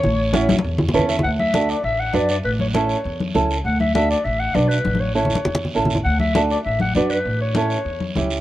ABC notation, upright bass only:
X:1
M:4/4
L:1/8
Q:1/4=200
K:D
V:1 name="Upright bass" clef=bass
A,,,4 E,,2 E,,2 | D,,4 A,,,2 F,,2 | A,,,4 E,,2 C,,2 | D,,4 A,,,2 B,,,2 |
A,,,4 E,,2 A,,,2 | D,,4 A,,,2 F,,2 | A,,,4 E,,2 C,,2 |]